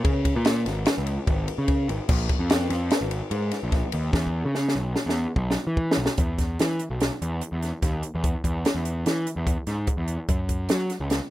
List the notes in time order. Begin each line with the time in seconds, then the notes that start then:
0.04 C#3, kick, ride
0.25 kick, ride
0.36 A#2
0.45 snare, ride
0.66 G#1, snare, ride
0.86 snare, ride
0.98 C#2
1.07 ride
1.27 G#1, kick, ride
1.48 ride
1.58 C#3
1.68 kick, ride
1.89 G#1, ride
2.09 A#1, kick, crash
2.29 kick, ride
2.39 F2
2.50 snare, ride
2.70 F2, snare, ride
2.91 snare, ride
3.01 G#1
3.11 ride
3.31 G#2, ride
3.51 snare, ride
3.63 A#1
3.72 kick, snare, ride
3.92 D#2, ride
4.13 E2, kick, snare
4.27 kick
4.45 C#3
4.55 snare
4.69 snare
4.75 B1
4.96 snare
5.06 E2, snare
5.36 B1, kick
5.51 snare
5.67 E3
5.77 kick
5.91 snare
5.97 B1
6.06 snare
6.18 E2, kick, closed hi-hat
6.38 kick, snare, closed hi-hat
6.59 E3, snare, closed hi-hat
6.79 closed hi-hat
6.90 B1
7.00 snare, closed hi-hat
7.22 E2, closed hi-hat
7.41 closed hi-hat
7.52 E2
7.63 snare, closed hi-hat
7.82 D#2, kick, snare, closed hi-hat
8.03 closed hi-hat
8.15 E2
8.24 kick, closed hi-hat
8.44 E2, kick, closed hi-hat
8.65 snare, closed hi-hat
8.75 E2
8.85 closed hi-hat
9.06 E3, snare, closed hi-hat
9.27 closed hi-hat
9.36 E2
9.47 kick, closed hi-hat
9.67 G#2, snare, closed hi-hat
9.87 kick, closed hi-hat
9.97 E2
10.08 closed hi-hat
10.29 F#2, kick, closed hi-hat
10.49 kick, closed hi-hat
10.69 F#3, snare, closed hi-hat
10.90 snare, closed hi-hat
11.00 C#2
11.10 snare, closed hi-hat